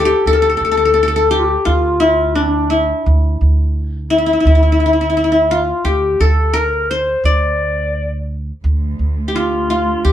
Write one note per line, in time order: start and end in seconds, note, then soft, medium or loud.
0.00 0.11 D2 loud
0.00 0.21 F4 medium
0.00 0.27 A4 medium
0.04 0.28 G4 medium
0.04 1.30 G4 medium
0.26 0.57 D2 medium
0.26 0.35 A4 medium
0.26 0.32 A4 medium
0.33 0.42 A4 medium
0.33 0.40 A#4 medium
0.39 1.32 A4 medium
0.39 0.49 A4 medium
0.49 0.57 A4 medium
0.57 1.54 D2 medium
0.57 0.64 A4 medium
0.65 0.71 A4 medium
0.71 0.77 A4 medium
0.77 0.85 A4 medium
0.85 0.93 A4 medium
0.94 1.02 A4 medium
1.03 1.07 A4 medium
1.08 1.16 A4 medium
1.16 2.33 A4 medium
1.30 1.41 G4 medium
1.30 2.56 G4 medium
1.39 1.47 F4 medium
1.45 1.67 G4 medium
1.65 2.91 D2 loud
1.65 2.06 F4 medium
1.65 2.36 F4 medium
2.00 2.70 E4 medium
2.35 2.44 D4 medium
2.35 3.85 D4 medium
2.42 2.50 C4 medium
2.48 2.71 D4 medium
2.70 3.05 E4 medium
2.70 4.10 E4 medium
3.06 3.37 D2 loud
3.41 4.34 D2 medium
4.10 4.18 E4 medium
4.10 5.52 E4 medium
4.18 4.26 E4 soft
4.26 4.33 E4 medium
4.33 4.40 E4 medium
4.40 4.46 E4 medium
4.45 5.70 D2 loud
4.45 4.55 E4 medium
4.55 4.62 E4 soft
4.63 4.72 E4 soft
4.72 4.80 E4 medium
4.80 4.85 E4 soft
4.86 4.93 E4 medium
4.93 5.01 E4 soft
5.01 5.09 E4 medium
5.10 5.17 E4 medium
5.17 5.24 E4 medium
5.24 5.31 E4 soft
5.32 5.57 E4 medium
5.51 5.88 F4 medium
5.51 6.86 F4 medium
5.85 6.16 D2 medium
5.85 7.10 G4 medium
5.85 6.23 G4 medium
6.20 7.14 D2 medium
6.20 6.59 A4 medium
6.20 6.58 A4 medium
6.53 7.67 A#4 loud
6.53 6.92 A#4 medium
6.90 7.24 C5 medium
6.90 7.96 C5 medium
7.24 8.49 D2 medium
7.24 8.26 D5 medium
8.64 8.95 D2 medium
8.64 10.12 D2 medium
8.99 9.93 D2 medium
9.28 10.04 G4 medium
9.35 10.06 F4 medium
9.35 9.70 F4 medium
9.70 10.12 F4 medium
10.04 10.12 D2 medium
10.04 10.12 G4 medium